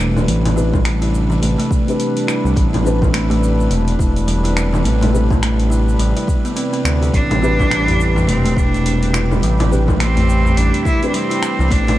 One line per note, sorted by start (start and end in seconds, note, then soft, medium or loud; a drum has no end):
0.00 0.25 E1 medium
0.00 11.98 C3 medium
0.00 11.98 G3 medium
0.00 0.53 C4 medium
0.00 0.53 D4 medium
0.00 7.13 D4 medium
0.00 0.54 G4 medium
0.00 0.55 B4 medium
0.00 11.98 B4 medium
0.00 cabasa medium
0.17 low conga medium
0.17 cabasa soft
0.28 1.39 A1 loud
0.28 open hi-hat medium
0.28 cabasa soft
0.45 open hi-hat soft
0.45 low conga medium
0.55 0.79 C4 medium
0.55 0.79 D4 medium
0.55 0.84 E4 medium
0.55 0.80 G4 medium
0.55 0.80 B4 medium
0.55 cabasa medium
0.74 kick loud
0.74 low conga medium
0.74 cabasa soft
0.85 1.00 G3 medium
0.85 finger snap medium
0.85 open hi-hat medium
0.85 cabasa soft
1.01 1.08 E4 medium
1.01 open hi-hat soft
1.14 cabasa medium
1.30 1.41 E3 loud
1.30 cabasa soft
1.42 1.56 A1 medium
1.42 1.57 A3 medium
1.42 open hi-hat medium
1.42 cabasa soft
1.58 1.70 A3 medium
1.58 open hi-hat soft
1.71 kick loud
1.71 cabasa medium
1.85 2.81 C4 medium
1.85 2.82 D4 medium
1.85 2.82 G4 medium
1.85 open hi-hat soft
1.85 cabasa soft
1.90 2.83 B4 medium
2.00 open hi-hat medium
2.00 cabasa soft
2.17 open hi-hat soft
2.27 2.55 E4 medium
2.27 finger snap medium
2.27 cabasa medium
2.45 2.54 C2 loud
2.45 cabasa soft
2.56 3.68 A1 loud
2.56 2.72 G3 medium
2.56 kick loud
2.56 open hi-hat medium
2.56 cabasa soft
2.73 2.80 E4 medium
2.73 open hi-hat soft
2.73 low conga medium
2.83 5.10 C4 loud
2.83 5.10 D4 medium
2.83 5.11 G4 medium
2.83 5.12 B4 loud
2.83 cabasa medium
3.02 3.12 E3 medium
3.02 kick loud
3.02 low conga medium
3.02 cabasa soft
3.14 3.29 A3 medium
3.14 finger snap medium
3.14 open hi-hat medium
3.14 cabasa soft
3.30 3.41 A3 loud
3.30 open hi-hat soft
3.43 cabasa medium
3.60 cabasa soft
3.70 3.95 E1 loud
3.70 open hi-hat medium
3.70 cabasa soft
3.88 open hi-hat soft
3.99 4.82 E1 medium
3.99 4.26 E4 medium
3.99 kick loud
3.99 cabasa medium
4.16 open hi-hat soft
4.16 cabasa soft
4.27 4.43 G3 medium
4.27 open hi-hat medium
4.27 cabasa soft
4.44 4.51 E4 medium
4.44 open hi-hat soft
4.57 finger snap medium
4.57 cabasa medium
4.73 4.83 E3 medium
4.73 low conga medium
4.73 cabasa soft
4.84 5.96 A1 loud
4.84 5.00 A3 medium
4.84 open hi-hat medium
4.84 cabasa soft
5.01 5.13 A3 loud
5.01 open hi-hat soft
5.01 low conga medium
5.12 5.36 C4 medium
5.12 5.36 D4 medium
5.12 5.37 G4 medium
5.12 5.37 B4 medium
5.12 cabasa medium
5.31 kick loud
5.31 low conga medium
5.31 cabasa soft
5.43 finger snap medium
5.43 open hi-hat medium
5.43 cabasa soft
5.60 open hi-hat soft
5.70 5.98 E4 medium
5.70 cabasa medium
5.89 cabasa soft
5.99 6.13 A1 medium
5.99 6.14 G3 medium
5.99 open hi-hat medium
5.99 cabasa soft
6.16 6.23 E4 medium
6.16 open hi-hat soft
6.28 kick loud
6.28 cabasa medium
6.45 6.51 B3 medium
6.45 open hi-hat soft
6.45 cabasa soft
6.56 6.72 C4 medium
6.56 open hi-hat medium
6.56 cabasa soft
6.73 6.84 C4 medium
6.73 open hi-hat soft
6.85 7.10 D2 medium
6.85 finger snap medium
6.85 cabasa medium
7.02 7.12 G4 medium
7.02 open hi-hat soft
7.02 cabasa soft
7.13 8.25 A1 loud
7.13 8.24 D4 loud
7.13 11.98 G4 medium
7.13 kick loud
7.13 open hi-hat medium
7.13 cabasa soft
7.31 open hi-hat soft
7.31 darbuka tek medium
7.31 low conga medium
7.40 9.67 C4 medium
7.40 9.68 D4 medium
7.40 7.69 E4 medium
7.40 9.68 G4 medium
7.40 cabasa medium
7.44 9.69 B4 loud
7.59 kick loud
7.59 darbuka ka soft
7.59 low conga medium
7.59 cabasa soft
7.71 7.86 G3 medium
7.71 finger snap medium
7.71 open hi-hat medium
7.71 cabasa soft
7.87 7.94 E4 medium
7.87 open hi-hat soft
7.87 darbuka dum medium
8.00 darbuka ka medium
8.00 cabasa medium
8.16 8.27 E3 loud
8.16 darbuka tek medium
8.16 darbuka dum medium
8.16 cabasa soft
8.27 8.53 E1 loud
8.27 8.43 A3 medium
8.27 8.60 C4 medium
8.27 open hi-hat medium
8.27 cabasa soft
8.45 8.56 A3 loud
8.45 open hi-hat soft
8.45 darbuka tek medium
8.57 9.39 E1 medium
8.57 9.14 D4 loud
8.57 kick loud
8.57 cabasa medium
8.74 open hi-hat soft
8.74 cabasa soft
8.86 open hi-hat medium
8.86 darbuka ka soft
8.86 cabasa soft
9.03 open hi-hat soft
9.13 9.41 E4 medium
9.13 finger snap medium
9.13 darbuka tek medium
9.13 cabasa medium
9.31 low conga medium
9.31 cabasa soft
9.42 10.54 A1 loud
9.42 9.58 G3 medium
9.42 open hi-hat medium
9.42 cabasa soft
9.60 9.66 E4 medium
9.60 open hi-hat soft
9.60 darbuka tek medium
9.60 low conga medium
9.70 9.94 C4 medium
9.70 9.94 D4 medium
9.70 9.94 G4 medium
9.70 9.95 B4 medium
9.70 cabasa medium
9.88 9.98 E3 medium
9.88 kick loud
9.88 darbuka ka medium
9.88 low conga medium
9.88 cabasa soft
9.99 10.15 A3 medium
9.99 10.58 C4 loud
9.99 finger snap medium
9.99 open hi-hat medium
9.99 cabasa soft
10.17 10.27 A3 loud
10.17 open hi-hat soft
10.17 darbuka dum medium
10.28 darbuka ka medium
10.28 cabasa medium
10.45 darbuka tek medium
10.45 darbuka dum medium
10.45 cabasa soft
10.57 10.71 A1 loud
10.57 10.84 D4 loud
10.57 open hi-hat medium
10.57 cabasa soft
10.74 open hi-hat soft
10.85 11.06 E4 loud
10.85 11.12 E4 medium
10.85 kick loud
10.85 darbuka tek medium
10.85 cabasa medium
11.00 11.96 C4 medium
11.00 11.96 D4 medium
11.00 11.97 G4 medium
11.00 11.98 B4 medium
11.00 open hi-hat soft
11.00 cabasa soft
11.08 11.16 D4 medium
11.14 11.29 G3 medium
11.14 11.73 C4 loud
11.14 open hi-hat medium
11.14 cabasa soft
11.30 11.37 E4 medium
11.30 open hi-hat soft
11.43 finger snap medium
11.43 cabasa medium
11.59 11.69 C2 loud
11.59 11.70 E3 medium
11.59 darbuka ka medium
11.59 cabasa soft
11.71 11.98 A1 loud
11.71 11.86 A3 medium
11.71 11.98 D4 loud
11.71 kick loud
11.71 open hi-hat medium
11.71 cabasa soft
11.87 11.98 A3 loud
11.87 open hi-hat soft
11.87 darbuka tek medium
11.87 low conga medium